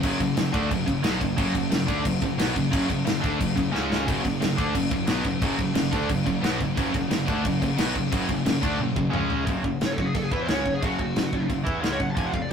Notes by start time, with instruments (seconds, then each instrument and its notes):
0.03 picked electric bass F#1, distorted electric guitar F#2 C#3 F#3, kick, crash
0.20 picked electric bass F#1, distorted electric guitar F#2 C#3, kick, crash
0.37 picked electric bass F#1, distorted electric guitar F#2 C#3, snare, crash
0.53 picked electric bass D2, distorted electric guitar D3 A3 D4, kick, crash
0.71 picked electric bass F#1, distorted electric guitar F#2 C#3, kick, crash
0.86 picked electric bass F#1, distorted electric guitar F#2 C#3, kick, crash
1.03 picked electric bass B1, distorted electric guitar B2 F#3 B3, snare, crash
1.20 picked electric bass F#1, distorted electric guitar F#2 C#3, kick, crash
1.37 picked electric bass F#1, distorted electric guitar F#2 C#3 F#3, kick, crash
1.55 picked electric bass F#1, distorted electric guitar F#2 C#3, kick, crash
1.71 picked electric bass F#1, distorted electric guitar F#2 C#3, snare, crash
1.87 picked electric bass D2, distorted electric guitar D3 A3 D4, kick, crash
2.05 picked electric bass F#1, distorted electric guitar F#2 C#3, kick, crash
2.22 picked electric bass F#1, distorted electric guitar F#2 C#3, kick, crash
2.39 picked electric bass B1, distorted electric guitar B2 F#3 B3, snare, crash
2.54 picked electric bass F#1, distorted electric guitar F#2 C#3, kick, crash
2.71 picked electric bass F#1, distorted electric guitar F#2 C#3 F#3, kick, crash
2.87 picked electric bass F#1, distorted electric guitar F#2 C#3, kick, crash
3.05 picked electric bass F#1, distorted electric guitar F#2 C#3, snare, crash
3.20 picked electric bass D2, distorted electric guitar D3 A3 D4, kick, crash
3.38 picked electric bass F#1, distorted electric guitar F#2 C#3, kick, crash
3.55 picked electric bass F#1, distorted electric guitar F#2 C#3, kick, crash
3.72 picked electric bass C#2, distorted electric guitar C#3 G#3 C#4, snare
3.92 snare
4.05 picked electric bass F#1, distorted electric guitar F#2 C#3 F#3, kick, crash
4.23 picked electric bass F#1, distorted electric guitar F#2 C#3, kick, crash
4.40 picked electric bass F#1, distorted electric guitar F#2 C#3, snare, crash
4.56 picked electric bass D2, distorted electric guitar D3 A3 D4, kick, crash
4.75 picked electric bass F#1, distorted electric guitar F#2 C#3, kick, crash
4.91 picked electric bass F#1, distorted electric guitar F#2 C#3, kick, crash
5.07 picked electric bass B1, distorted electric guitar B2 F#3 B3, snare, crash
5.24 picked electric bass F#1, distorted electric guitar F#2 C#3, kick, crash
5.42 picked electric bass F#1, distorted electric guitar F#2 C#3 F#3, kick, crash
5.58 picked electric bass F#1, distorted electric guitar F#2 C#3, kick, crash
5.75 picked electric bass F#1, distorted electric guitar F#2 C#3, snare, crash
5.92 picked electric bass D2, distorted electric guitar D3 A3 D4, kick, crash
6.09 picked electric bass F#1, distorted electric guitar F#2 C#3, kick, crash
6.26 picked electric bass F#1, distorted electric guitar F#2 C#3, kick, crash
6.43 picked electric bass B1, distorted electric guitar B2 F#3 B3, snare, crash
6.60 picked electric bass F#1, distorted electric guitar F#2 C#3, kick, crash
6.77 picked electric bass F#1, distorted electric guitar F#2 C#3 F#3, kick, crash
6.94 picked electric bass F#1, distorted electric guitar F#2 C#3, kick, crash
7.10 picked electric bass F#1, distorted electric guitar F#2 C#3, snare, crash
7.27 picked electric bass D2, distorted electric guitar D3 A3 D4, kick, crash
7.45 picked electric bass F#1, distorted electric guitar F#2 C#3, kick, crash
7.62 picked electric bass F#1, distorted electric guitar F#2 C#3, kick, crash
7.78 picked electric bass B1, distorted electric guitar B2 F#3 B3, snare, crash
7.95 picked electric bass F#1, distorted electric guitar F#2 C#3, kick, crash
8.12 picked electric bass F#1, distorted electric guitar F#2 C#3 F#3, kick, crash
8.29 picked electric bass F#1, distorted electric guitar F#2 C#3, kick, crash
8.45 picked electric bass F#1, distorted electric guitar F#2 C#3, snare, crash
8.61 picked electric bass D2, distorted electric guitar D3 A3 D4, kick, crash
8.79 picked electric bass F#1, distorted electric guitar F#2 C#3, high tom
8.96 picked electric bass F#1, distorted electric guitar F#2 C#3, kick
9.11 picked electric bass C#2, distorted electric guitar C#3 G#3 C#4, mid tom
9.30 floor tom
9.44 picked electric bass F#1, distorted electric guitar F#2 C#3 F#3, kick, crash
9.63 picked electric bass F#1, distorted electric guitar F#2 C#3, kick
9.81 picked electric bass F#1, distorted electric guitar F#2 C#3, snare, crash
9.87 lead electric guitar C#5
9.91 lead electric guitar A4
9.97 picked electric bass F#1, distorted electric guitar F#2 C#3, lead electric guitar F#4, kick
10.05 lead electric guitar G#4
10.14 picked electric bass F#1, distorted electric guitar F#2 C#3, lead electric guitar A4, kick, crash
10.23 lead electric guitar G#4
10.32 picked electric bass E2, distorted electric guitar E3 B3 E4, lead electric guitar B4, kick
10.42 lead electric guitar C5
10.48 picked electric bass C#2, distorted electric guitar C#3 G#3 C#4, lead electric guitar C#5, snare, crash
10.66 picked electric bass F#1, distorted electric guitar F#2 C#3, kick
10.74 lead electric guitar G#4
10.82 picked electric bass F#1, distorted electric guitar F#2 C#3 F#3, lead electric guitar F#4, kick, crash
10.99 picked electric bass F#1, distorted electric guitar F#2 C#3, kick
11.16 picked electric bass F#1, distorted electric guitar F#2 C#3, snare, crash
11.33 picked electric bass F#1, distorted electric guitar F#2 C#3, kick
11.50 picked electric bass F#1, distorted electric guitar F#2 C#3, kick, crash
11.64 picked electric bass E2, distorted electric guitar E3 B3 E4, kick
11.81 picked electric bass C#2, distorted electric guitar C#3 G#3 C#4, snare, crash
11.93 lead electric guitar C#5
11.98 picked electric bass F#1, distorted electric guitar F#2 C#3, lead electric guitar F#5, kick
12.11 lead electric guitar A5
12.15 picked electric bass F1, distorted electric guitar F2 C3 F3, lead electric guitar G#5, kick, crash
12.26 lead electric guitar F#5
12.32 picked electric bass F1, distorted electric guitar F2 C3, lead electric guitar F5, kick
12.42 lead electric guitar D5